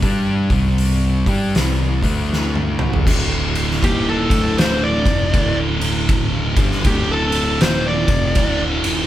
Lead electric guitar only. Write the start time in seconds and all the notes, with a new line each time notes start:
3.84 G4
4.09 A4
4.58 C5
4.84 D5
6.87 G4
7.12 A4
7.62 C5
7.87 D5